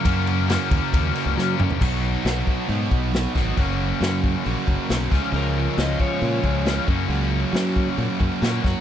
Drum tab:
CC |----------------|x---------------|----------------|----------------|
RD |x-x-x-x-x-x-----|----------------|----------------|----------------|
HH |----------------|----o---o---o---|o---o---o---o---|o---o---o---o---|
SD |----o-----o-o---|----o-------o-o-|----o-------o-o-|----o-------o---|
T2 |--------------o-|----------------|----------------|----------------|
FT |---------------o|----------------|----------------|----------------|
BD |o-----o-o-------|o-----o---o---o-|o-----o---o---o-|------o---o---o-|

CC |----------------|
RD |----------------|
HH |o---o---o---o---|
SD |----oo------o-o-|
T2 |----------------|
FT |----------------|
BD |------o---o---o-|